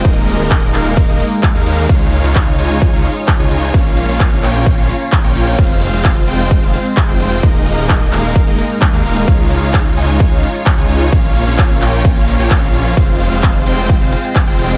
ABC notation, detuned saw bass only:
X:1
M:4/4
L:1/16
Q:1/4=130
K:Fm
V:1 name="Detuned saw bass" clef=bass
E,,,3 E,,,3 E,,,3 E,,, z3 E,, E,,2 | D,,3 D,,3 D,,3 D,, z3 D,, D,,2 | B,,,3 B,,,3 B,,,3 B,,, z3 B,,, B,,,2 | F,,,3 F,,,3 F,,,3 F,,, z3 F,,, F,,,2 |
E,,,3 E,,,3 E,,,3 E,,, z3 E,, E,,,2 | D,,3 D,,3 D,,3 D,, z3 D,, D,,2 | B,,,3 B,,,3 B,,,3 B,,,2 B,,,2 B,,,3 | F,,,3 F,,,3 F,,,3 F,,, z3 F,,, F,,,2 |]